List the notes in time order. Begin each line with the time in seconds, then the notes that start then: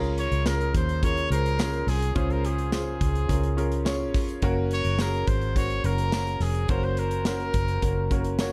Already playing: C#2 C#3 C#4 F4 G#4 A#4
0.03 closed hi-hat
0.18 C#5, closed hi-hat
0.31 C#2, closed hi-hat
0.46 C#4 F4 G#4 A#4, snare, tambourine
0.61 closed hi-hat
0.74 D#2 C5, kick, closed hi-hat
0.89 closed hi-hat
1.03 C#4 F4 G#4 A#4 C#5, kick, closed hi-hat
1.17 closed hi-hat
1.30 C#2 C#4 F4 G#4 A#4 C5, closed hi-hat
1.46 closed hi-hat
1.59 C#4 F4 G#4 A#4, snare, tambourine
1.74 closed hi-hat
1.87 C2 G#4, snare, open hi-hat
2.02 closed hi-hat
2.15 C#2 C#3 C#4 F4 G#4 C5, kick, closed hi-hat
2.30 A#4, closed hi-hat
2.45 G#4, closed hi-hat
2.58 closed hi-hat
2.72 C#4 F4 G#4 C5, snare, tambourine
3.01 C#2, kick, closed hi-hat
3.15 closed hi-hat
3.28 C#2 C#4 F4 G#4 A#4, kick, closed hi-hat
3.43 closed hi-hat
3.57 C#4 F4 G#4 A#4, closed hi-hat
3.72 closed hi-hat
3.85 C#4 F4 G#4 C#5, snare, tambourine
4.14 F1, kick, snare, open hi-hat
4.29 closed hi-hat
4.42 F#1 A#3 C#4 F#4 A#4, kick, closed hi-hat
4.71 C#5, closed hi-hat
4.85 F#1, closed hi-hat
4.99 A#3 C#4 F#4 G#4 A#4, snare, tambourine
5.13 closed hi-hat
5.27 G#1 C5, kick, closed hi-hat
5.41 closed hi-hat
5.56 A#3 C#4 F#4 C5 C#5, kick, closed hi-hat
5.70 closed hi-hat
5.84 F#1 A#3 C#4 F#4 A#4, closed hi-hat
5.98 closed hi-hat
6.12 A#3 C#4 F#4 A#4, snare, tambourine
6.27 closed hi-hat
6.40 F1 G#4, snare, open hi-hat
6.55 closed hi-hat
6.68 F#1 A#3 C#4 F#4 A#4 C5, kick, closed hi-hat
6.83 C5, closed hi-hat
6.97 A#4, closed hi-hat
7.11 closed hi-hat
7.25 A#3 C#4 F#4 A#4, snare, tambourine
7.40 closed hi-hat
7.54 F#1, kick, closed hi-hat
7.68 closed hi-hat
7.82 F#1 A#3 C#4 F#4 A#4, kick, closed hi-hat
8.11 A#3 C#4 F#4 A#4, kick, closed hi-hat
8.24 closed hi-hat
8.39 A#3 C#4 F#4 C#5, snare, tambourine